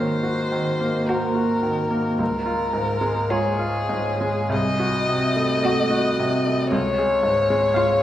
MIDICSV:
0, 0, Header, 1, 5, 480
1, 0, Start_track
1, 0, Key_signature, -5, "major"
1, 0, Tempo, 1123596
1, 940, Time_signature, 4, 2, 24, 8
1, 1419, Tempo, 1204819
1, 1899, Tempo, 1121495
1, 2379, Tempo, 1058201
1, 3459, End_track
2, 0, Start_track
2, 0, Title_t, "Violin"
2, 0, Program_c, 0, 40
2, 0, Note_on_c, 0, 72, 47
2, 463, Note_on_c, 0, 70, 43
2, 469, Note_off_c, 0, 72, 0
2, 939, Note_off_c, 0, 70, 0
2, 943, Note_on_c, 0, 70, 60
2, 1414, Note_on_c, 0, 68, 53
2, 1420, Note_off_c, 0, 70, 0
2, 1898, Note_on_c, 0, 75, 58
2, 1904, Note_off_c, 0, 68, 0
2, 2863, Note_off_c, 0, 75, 0
2, 2866, Note_on_c, 0, 73, 59
2, 3459, Note_off_c, 0, 73, 0
2, 3459, End_track
3, 0, Start_track
3, 0, Title_t, "Violin"
3, 0, Program_c, 1, 40
3, 466, Note_on_c, 1, 66, 43
3, 829, Note_off_c, 1, 66, 0
3, 1412, Note_on_c, 1, 65, 37
3, 1785, Note_off_c, 1, 65, 0
3, 2380, Note_on_c, 1, 66, 46
3, 2751, Note_off_c, 1, 66, 0
3, 3339, Note_on_c, 1, 65, 44
3, 3459, Note_off_c, 1, 65, 0
3, 3459, End_track
4, 0, Start_track
4, 0, Title_t, "Grand piano"
4, 0, Program_c, 2, 0
4, 0, Control_c, 2, 64, 127
4, 0, Note_on_c, 2, 51, 29
4, 0, Note_on_c, 2, 58, 24
4, 0, Note_on_c, 2, 66, 30
4, 0, Note_on_c, 2, 72, 32
4, 48, Note_off_c, 2, 58, 0
4, 100, Note_off_c, 2, 66, 0
4, 100, Note_on_c, 2, 66, 30
4, 174, Note_off_c, 2, 51, 0
4, 222, Note_on_c, 2, 51, 28
4, 296, Note_off_c, 2, 66, 0
4, 343, Note_on_c, 2, 58, 28
4, 417, Note_off_c, 2, 51, 0
4, 456, Note_off_c, 2, 72, 0
4, 456, Note_on_c, 2, 72, 31
4, 536, Note_off_c, 2, 58, 0
4, 578, Note_on_c, 2, 66, 28
4, 651, Note_off_c, 2, 72, 0
4, 696, Note_on_c, 2, 51, 28
4, 771, Note_off_c, 2, 66, 0
4, 814, Note_on_c, 2, 58, 26
4, 889, Note_off_c, 2, 51, 0
4, 935, Note_on_c, 2, 37, 32
4, 936, Note_off_c, 2, 58, 0
4, 948, Control_c, 2, 64, 0
4, 1010, Control_c, 2, 64, 127
4, 1049, Note_on_c, 2, 65, 31
4, 1168, Note_on_c, 2, 44, 29
4, 1244, Note_off_c, 2, 65, 0
4, 1286, Note_on_c, 2, 56, 29
4, 1365, Note_off_c, 2, 44, 0
4, 1411, Note_on_c, 2, 73, 36
4, 1483, Note_off_c, 2, 56, 0
4, 1525, Note_on_c, 2, 65, 33
4, 1605, Note_off_c, 2, 73, 0
4, 1647, Note_on_c, 2, 44, 33
4, 1727, Note_off_c, 2, 65, 0
4, 1772, Note_on_c, 2, 56, 28
4, 1846, Note_off_c, 2, 44, 0
4, 1879, Note_off_c, 2, 37, 0
4, 1886, Note_on_c, 2, 36, 46
4, 1894, Note_off_c, 2, 56, 0
4, 1905, Control_c, 2, 64, 0
4, 1990, Control_c, 2, 64, 127
4, 2014, Note_on_c, 2, 66, 31
4, 2137, Note_on_c, 2, 48, 31
4, 2208, Note_off_c, 2, 66, 0
4, 2256, Note_on_c, 2, 57, 31
4, 2329, Note_off_c, 2, 48, 0
4, 2373, Note_on_c, 2, 75, 37
4, 2452, Note_off_c, 2, 57, 0
4, 2496, Note_on_c, 2, 66, 34
4, 2573, Note_off_c, 2, 75, 0
4, 2626, Note_on_c, 2, 48, 32
4, 2693, Note_off_c, 2, 66, 0
4, 2748, Note_on_c, 2, 57, 30
4, 2816, Note_off_c, 2, 48, 0
4, 2838, Note_off_c, 2, 36, 0
4, 2863, Note_on_c, 2, 37, 42
4, 2865, Note_off_c, 2, 57, 0
4, 2870, Control_c, 2, 64, 0
4, 2948, Control_c, 2, 64, 127
4, 2984, Note_on_c, 2, 68, 33
4, 3098, Note_on_c, 2, 44, 32
4, 3172, Note_off_c, 2, 68, 0
4, 3220, Note_on_c, 2, 56, 33
4, 3289, Note_off_c, 2, 44, 0
4, 3329, Note_on_c, 2, 77, 39
4, 3410, Note_off_c, 2, 56, 0
4, 3459, Note_off_c, 2, 37, 0
4, 3459, Note_off_c, 2, 77, 0
4, 3459, End_track
5, 0, Start_track
5, 0, Title_t, "Cello"
5, 0, Program_c, 3, 42
5, 471, Note_on_c, 3, 58, 38
5, 831, Note_off_c, 3, 58, 0
5, 1416, Note_on_c, 3, 56, 37
5, 1788, Note_off_c, 3, 56, 0
5, 2373, Note_on_c, 3, 57, 44
5, 2747, Note_off_c, 3, 57, 0
5, 3329, Note_on_c, 3, 56, 40
5, 3459, Note_off_c, 3, 56, 0
5, 3459, End_track
0, 0, End_of_file